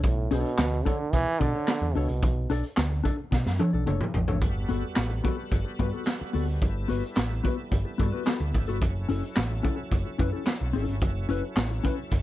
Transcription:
0.03 B1 A2, kick, closed hi-hat
0.31 B1 B2 D4 A4 C#5, closed hi-hat
0.45 closed hi-hat
0.58 D2, muted clean electric guitar stroke, snare, clap, closed hi-hat
0.72 muted clean electric guitar stroke
0.85 D3 D4 A4 C#5, kick, closed hi-hat
0.99 muted clean electric guitar stroke
1.12 B1 E3, muted clean electric guitar stroke, kick, closed hi-hat
1.27 muted clean electric guitar stroke
1.39 B2 D3 D4 A4 D5, kick, closed hi-hat
1.54 D4 A4 C#5
1.68 muted clean electric guitar stroke, snare, clap, closed hi-hat
1.82 E2, muted clean electric guitar stroke
1.94 C#2 B2 D4 A4 C#5, open hi-hat
2.09 C2, muted clean electric guitar stroke, closed hi-hat
2.22 B1, kick, closed hi-hat
2.50 B1 D4 A4 D5, closed hi-hat
2.64 closed hi-hat
2.77 D2, muted clean electric guitar stroke, snare, clap, closed hi-hat
2.90 muted clean electric guitar stroke
3.04 D4 A4 D5, kick, closed hi-hat
3.17 muted clean electric guitar stroke
3.31 B2, muted clean electric guitar stroke, kick, snare
3.45 F#2, muted clean electric guitar stroke, snare
3.59 D4 A4 C#5, high tom
3.73 B1 D4 A4 D5
3.86 F#1 D4 A4 C#5, mid tom
4.01 mid tom
4.14 A1, muted clean electric guitar stroke, floor tom
4.28 G#1 D4 A4 C#5, floor tom
4.42 G1 G3 B3 F#4 A4, kick, closed hi-hat
4.69 G1 B3 F#4 A4, closed hi-hat
4.96 A1, muted clean electric guitar stroke, snare, clap, closed hi-hat
5.10 muted clean electric guitar stroke
5.24 B3 F#4 A4, kick, closed hi-hat
5.38 muted clean electric guitar stroke
5.51 G1, muted clean electric guitar stroke, kick, closed hi-hat
5.65 muted clean electric guitar stroke
5.79 G2 B3 F#4 B4, kick, closed hi-hat
5.93 B3 F#4 A4
6.06 muted clean electric guitar stroke, snare, clap, closed hi-hat
6.20 muted clean electric guitar stroke, muted picked electric bass stroke
6.33 D2 B3 F#4 A4, open hi-hat
6.47 muted clean electric guitar stroke
6.62 G1 E4, kick, closed hi-hat
6.88 G1 B3 F#4 B4, closed hi-hat
7.03 closed hi-hat
7.16 A1, muted clean electric guitar stroke, snare, clap, closed hi-hat
7.30 muted clean electric guitar stroke
7.44 B3 F#4 B4, kick, closed hi-hat
7.57 muted clean electric guitar stroke
7.71 G1, muted clean electric guitar stroke, kick, closed hi-hat
7.85 muted clean electric guitar stroke
7.98 G2 B3 F#4 A4, kick, closed hi-hat
8.12 B3 F#4 B4
8.25 B3 F#4 A4, snare, clap, closed hi-hat
8.40 D2
8.54 G#1, muted clean electric guitar stroke, kick, open hi-hat
8.68 G1 B3 F#4 A4, closed hi-hat
8.81 F#1 F#3 C#4, kick, closed hi-hat
9.09 F#1 C#4 E4 A4, closed hi-hat
9.23 closed hi-hat
9.36 A1, muted clean electric guitar stroke, snare, clap, closed hi-hat
9.50 muted clean electric guitar stroke
9.63 C#4 E4 A4, kick, closed hi-hat
9.78 muted clean electric guitar stroke
9.91 F#1, muted clean electric guitar stroke, kick, closed hi-hat
10.05 muted clean electric guitar stroke
10.18 F#2 C#4 E4 B4, kick, closed hi-hat
10.32 C#4 E4 A4
10.46 muted clean electric guitar stroke, snare, clap, closed hi-hat
10.60 B1, muted clean electric guitar stroke
10.73 G#1 C#4 E4 A4, open hi-hat
10.88 G1, muted clean electric guitar stroke, closed hi-hat
11.02 F#1, kick, closed hi-hat
11.29 F#1 C#4 E4 B4, closed hi-hat
11.56 A1, muted clean electric guitar stroke, snare, clap, closed hi-hat
11.70 muted clean electric guitar stroke
11.84 C#4 E4 B4, kick, closed hi-hat
11.98 muted clean electric guitar stroke
12.11 F#1, muted clean electric guitar stroke, kick, closed hi-hat

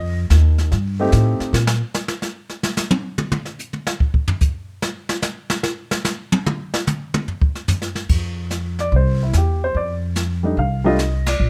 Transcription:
Already playing: F2 D#5
0.30 D#2, snare, hi-hat pedal
0.58 snare
0.72 G2, brush sweep, kick, snare
0.99 A3 C4 D#4 G4
1.12 A2, kick, snare, hi-hat pedal
1.40 muted upright bass stroke, snare
1.53 A#2, snare
1.67 snare
1.94 snare, hi-hat pedal
2.08 snare
2.22 snare
2.50 snare
2.63 snare
2.77 snare, hi-hat pedal
2.91 high tom
3.18 mid tom
3.32 mid tom
3.45 snare
3.59 hi-hat pedal
3.73 mid tom
3.87 snare
4.00 kick
4.14 kick
4.28 floor tom
4.41 kick, hi-hat pedal
4.82 snare
5.09 snare
5.22 snare, hi-hat pedal
5.50 snare
5.63 snare
5.91 snare
6.04 snare, hi-hat pedal
6.32 high tom
6.46 mid tom
6.74 snare
6.87 hi-hat pedal, mid tom
7.14 mid tom
7.28 floor tom
7.42 kick
7.55 snare
7.68 floor tom, hi-hat pedal
7.82 snare
7.95 snare
8.09 F2, brush sweep, kick, crash
8.50 snare, hi-hat pedal
8.79 D5, snare
8.91 C2, brush sweep, kick
8.96 C5
9.23 E4
9.33 E2, snare, hi-hat pedal
9.37 G4
9.64 C5
9.75 F2 D5, brush sweep, kick
10.16 snare, hi-hat pedal
10.43 G3 A3 D4 D#4
10.57 C2 F5, brush sweep, kick
10.84 G3 A3 D4 F4 D#5
10.99 snare, hi-hat pedal
11.26 D5, snare, ride
11.40 A#1, brush sweep

